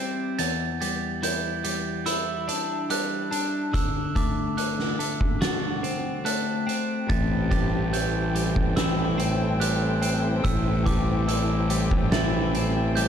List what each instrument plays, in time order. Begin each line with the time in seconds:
Already playing: clean electric guitar G3 C4 E4, glockenspiel G6
0.39 clean electric guitar E2, glockenspiel A6, closed hi-hat
0.80 clean electric guitar G3, glockenspiel A6, closed hi-hat
1.22 clean electric guitar E3, glockenspiel G6, closed hi-hat
1.64 clean electric guitar G3, closed hi-hat
2.06 clean electric guitar E4, glockenspiel E6, closed hi-hat
2.48 clean electric guitar D4, closed hi-hat
2.90 clean electric guitar G3, glockenspiel F#6, closed hi-hat
3.31 clean electric guitar D4, closed hi-hat
3.73 clean electric guitar D3, glockenspiel E6, kick, closed hi-hat
4.15 clean electric guitar A3, glockenspiel D6, kick, closed hi-hat
4.57 clean electric guitar D3, glockenspiel F#6, closed hi-hat
4.79 snare
4.99 clean electric guitar A3, closed hi-hat
5.21 kick
5.41 clean electric guitar F#4, glockenspiel A6, snare, closed hi-hat
5.83 clean electric guitar C4, closed hi-hat
6.25 clean electric guitar A3, glockenspiel F#6, closed hi-hat
6.67 clean electric guitar C4, closed hi-hat
7.09 fingered electric bass A1, clean electric guitar A2, string section E4 A4 C5 G5, glockenspiel A6, kick, closed hi-hat
7.51 clean electric guitar G3, glockenspiel A6, kick, closed hi-hat
7.93 clean electric guitar E3, glockenspiel G6, closed hi-hat
8.35 clean electric guitar G3, closed hi-hat
8.56 kick
8.76 clean electric guitar E4, glockenspiel E6, snare, closed hi-hat
9.18 clean electric guitar C4, closed hi-hat
9.60 clean electric guitar G3, glockenspiel F#6, closed hi-hat
10.02 clean electric guitar C4, closed hi-hat
10.44 fingered electric bass A1, clean electric guitar A2, glockenspiel E6, kick, closed hi-hat
10.86 clean electric guitar G3, glockenspiel D6, kick, closed hi-hat
11.28 clean electric guitar E3, glockenspiel E6, closed hi-hat
11.70 clean electric guitar G3, closed hi-hat
11.91 kick
12.12 clean electric guitar E4, glockenspiel A6, snare, closed hi-hat
12.55 clean electric guitar C4, closed hi-hat
12.96 clean electric guitar G3, glockenspiel G6, closed hi-hat